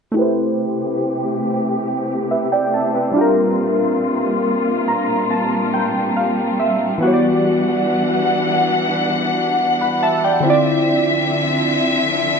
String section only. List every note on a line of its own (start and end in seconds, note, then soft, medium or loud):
0.16 3.13 C3 medium
0.16 3.13 A3 medium
0.16 6.98 C4 medium
0.16 3.13 G4 medium
3.15 6.97 A#2 medium
3.15 10.40 G3 medium
3.15 6.98 F4 medium
7.01 10.41 E3 medium
7.01 10.41 D4 medium
7.01 10.41 F#5 medium
10.44 12.40 D3 medium
10.44 12.40 F3 medium
10.44 12.40 C4 medium
10.44 12.40 E5 medium